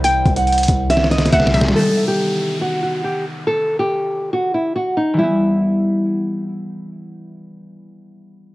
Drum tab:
HH |x-----------x-----x-----x--x--x--x--x-----------x-----------x---x---x---x-----------o-----------|------------------------------------------------------------------------------------------------|------------------------------------------------------------------------------------------------|------------------------------------------------------------------------------------------------|
SD |------------------------------------------------o---o---o---o---o---o---o---o---o---o---o---o---|------------------------------------------------------------------------------------------------|------------------------------------------------------------------------------------------------|------------------------------------------------------------------------------------------------|
BD |------------o-----------------------o-----------------------------------o-----------------------|------------------------------------------------------------------------------------------------|------------------------------------------------------------------------------------------------|------------------------------------------------------------------------------------------------|

HH |------------------------------------------------------------------------------------------------|
SD |------------------------------------------------------------------------------------------------|
BD |------------------------------------------------------------------------------------------------|